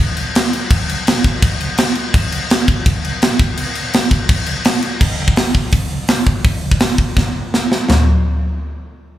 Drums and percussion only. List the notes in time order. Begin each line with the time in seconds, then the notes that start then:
0.17 crash
0.35 snare, crash
0.53 crash
0.70 kick, crash
0.89 crash
1.07 snare, crash
1.24 kick, crash
1.42 kick, crash
1.61 crash
1.78 snare, crash
1.95 crash
2.14 kick, crash
2.32 crash
2.50 snare, crash
2.68 kick, crash
2.86 kick, crash
3.04 crash
3.22 snare, crash
3.39 kick, crash
3.57 crash
3.75 crash
3.93 snare, crash
4.11 kick, crash
4.29 kick, crash
4.46 crash
4.65 snare, crash
4.82 crash
5.01 kick, crash
5.28 kick
5.36 snare, open hi-hat
5.55 kick
5.72 kick, open hi-hat
6.08 snare, open hi-hat
6.27 kick
6.45 kick, open hi-hat
6.71 kick
6.80 snare, open hi-hat
6.98 kick
7.17 kick, snare
7.54 snare
7.72 snare
7.90 snare, floor tom, china